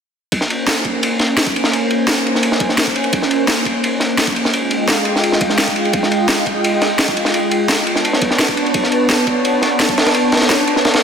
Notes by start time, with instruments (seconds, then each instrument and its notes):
0.32 analog synth pad A#3 C#4 C5 G#5, kick, ride
0.41 snare
0.50 ride
0.67 snare, ride
0.85 kick, ride
1.03 ride
1.19 snare, ride
1.37 snare, ride
1.47 kick
1.56 ride
1.64 snare
1.73 ride
1.90 ride
2.07 snare, ride
2.26 ride
2.35 snare
2.43 ride
2.52 snare
2.60 kick, ride
2.69 snare
2.78 snare, ride
2.87 kick
2.95 ride
3.04 ride
3.13 kick, ride
3.22 snare
3.31 ride
3.48 snare, ride
3.65 kick, ride
3.84 ride
4.00 snare, ride
4.18 snare, ride
4.27 kick
4.36 ride
4.45 snare
4.53 analog synth pad G#3 F4 D#5 G5, ride
4.71 ride
4.88 snare, ride
5.05 ride
5.16 snare
5.23 ride
5.32 snare
5.41 kick, ride
5.50 snare
5.58 snare, ride
5.68 kick
5.76 ride
5.85 ride
5.93 kick, ride
6.03 snare
6.11 ride
6.28 snare, ride
6.46 kick, ride
6.64 ride
6.82 snare, ride
6.99 snare, ride
7.08 kick
7.17 ride
7.25 snare
7.34 ride
7.51 ride
7.69 snare, ride
7.86 analog synth pad B3 D4 C#5 A5, ride
7.96 snare
8.05 ride
8.13 snare
8.22 kick, ride
8.31 snare
8.39 snare, ride
8.48 kick
8.57 ride
8.66 ride
8.74 kick, ride
8.84 snare
8.92 ride
9.09 snare, ride
9.27 kick, ride
9.45 ride
9.62 snare, ride
9.80 snare, ride
9.89 kick
9.98 snare, ride
10.06 snare, ride
10.14 ride
10.32 snare, ride
10.37 snare, ride
10.42 snare, ride
10.49 snare, ride
10.67 ride
10.76 snare
10.85 snare, ride
10.94 snare, ride